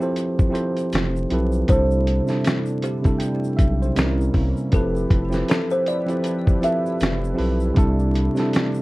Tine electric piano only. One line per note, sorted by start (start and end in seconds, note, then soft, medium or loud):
0.00 0.49 F3 loud
0.00 0.50 C4 medium
0.00 0.51 E4 loud
0.00 0.52 G4 medium
0.00 0.02 A4 medium
0.00 0.39 A4 medium
0.00 1.34 B4 loud
0.00 0.39 C5 medium
0.49 1.04 F3 medium
0.49 1.04 C4 medium
0.49 1.05 E4 medium
0.49 1.05 G4 medium
0.49 1.06 A4 medium
0.54 1.06 C5 medium
1.29 1.57 F3 medium
1.29 1.58 C4 medium
1.29 1.58 E4 medium
1.29 1.58 G4 medium
1.29 1.59 A4 medium
1.34 1.59 B4 medium
1.68 2.06 C3 medium
1.68 2.06 G3 medium
1.68 2.07 D4 medium
1.68 2.07 E4 medium
1.72 2.08 A4 loud
2.25 2.75 C3 medium
2.25 2.75 G3 medium
2.25 2.76 D4 medium
2.25 2.77 E4 medium
2.30 2.77 A4 medium
3.02 3.41 C3 medium
3.02 3.41 G3 medium
3.02 3.42 D4 medium
3.02 3.42 E4 medium
3.07 3.43 A4 medium
3.18 3.56 G5 medium
3.57 3.79 E5 medium
3.82 4.18 C5 medium
3.96 4.60 C3 medium
3.96 4.60 G3 medium
3.96 4.61 C#4 medium
3.96 4.06 D#4 medium
4.00 4.62 A#4 medium
4.05 4.65 E4 medium
4.72 5.10 F3 medium
4.72 5.10 C4 medium
4.72 5.10 E4 medium
4.72 5.11 G4 medium
4.72 5.11 A4 medium
4.76 5.12 B4 medium
5.29 5.79 F3 medium
5.29 5.79 C4 medium
5.29 5.80 E4 medium
5.29 5.80 G4 medium
5.29 5.81 A4 medium
5.34 5.81 B4 medium
6.06 6.44 F3 medium
6.06 6.45 C4 medium
6.06 6.45 E4 medium
6.06 6.46 G4 medium
6.06 6.46 A4 medium
6.10 6.47 D5 medium
6.61 7.13 F3 medium
6.61 7.14 C4 medium
6.61 7.14 E4 medium
6.61 7.14 G4 medium
6.61 7.15 A4 medium
6.65 7.15 B4 medium
7.34 7.63 F3 medium
7.34 7.64 C4 medium
7.34 7.64 E4 medium
7.34 7.65 G4 medium
7.34 7.65 A4 medium
7.39 7.66 B4 medium
7.74 8.13 C3 loud
7.74 8.13 G3 medium
7.74 8.14 D4 medium
7.74 8.14 E4 medium
7.78 8.15 A4 loud
8.35 8.82 C3 medium
8.35 8.82 G3 medium
8.35 8.82 D4 medium
8.35 8.82 E4 medium
8.40 8.82 A4 medium